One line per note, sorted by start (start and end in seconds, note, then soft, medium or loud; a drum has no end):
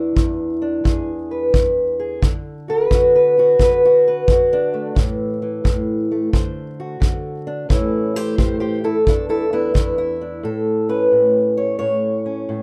0.00 0.15 E2 medium
0.00 2.23 E3 soft
0.00 0.61 D4 soft
0.00 1.10 E4 medium
0.16 0.83 E2 medium
0.16 kick medium
0.62 2.20 D4 soft
0.84 1.52 E2 medium
0.84 1.98 G#4 soft
0.84 kick medium
1.31 2.20 B4 soft
1.53 2.22 E2 medium
1.53 kick medium
2.00 2.20 G#4 medium
2.22 2.89 D3 medium
2.22 kick medium
2.68 2.91 F#4 soft
2.68 3.14 B4 medium
2.90 3.58 D3 medium
2.90 3.38 F#4 medium
2.90 kick medium
3.15 3.61 B4 medium
3.37 4.51 C4 soft
3.37 3.84 F#4 medium
3.59 4.26 D3 medium
3.59 4.06 B4 medium
3.59 kick medium
3.85 4.30 F#4 medium
4.08 4.98 B4 medium
4.27 4.94 D3 medium
4.27 4.98 F#4 medium
4.27 kick medium
4.53 4.98 D4 medium
4.74 4.96 A3 soft
4.95 5.63 A2 medium
4.95 5.41 E3 medium
4.95 kick medium
5.42 6.33 E3 soft
5.64 6.33 A2 medium
5.64 kick medium
6.11 7.46 A3 soft
6.33 6.99 D3 medium
6.33 7.68 C5 medium
6.33 kick medium
6.80 7.68 F#4 medium
7.00 7.67 D3 medium
7.00 kick medium
7.47 7.67 D4 medium
7.69 8.37 A2 medium
7.69 9.07 E3 medium
7.69 8.15 A3 soft
7.69 8.16 C#4 medium
7.69 8.16 E4 medium
7.69 kick medium
8.16 8.84 A3 soft
8.16 8.37 G4 medium
8.16 8.38 C5 medium
8.38 9.07 A2 medium
8.38 8.59 G4 medium
8.38 8.60 C5 medium
8.38 kick medium
8.60 8.83 G4 medium
8.60 8.84 C5 medium
8.84 9.07 A3 soft
8.84 8.95 E4 medium
8.84 9.07 A4 medium
9.07 9.75 E2 medium
9.07 9.52 E3 soft
9.07 9.52 D4 soft
9.07 9.15 E4 medium
9.07 9.29 A4 medium
9.07 kick medium
9.29 9.44 E4 medium
9.29 9.52 A4 medium
9.53 9.73 B3 medium
9.53 10.20 D4 soft
9.53 9.74 E4 medium
9.74 10.44 E2 medium
9.74 9.97 B3 medium
9.74 9.97 E4 medium
9.74 kick medium
9.98 10.43 E4 medium
10.21 10.41 D4 soft
10.43 11.11 A2 medium
10.43 10.89 A4 medium
10.89 12.25 C#4 soft
10.89 11.57 B4 medium
11.12 11.79 A2 medium
11.57 11.78 C#5 medium
11.79 12.48 A2 medium
11.79 12.62 C#5 medium
12.26 12.62 C#4 soft
12.49 12.62 A2 medium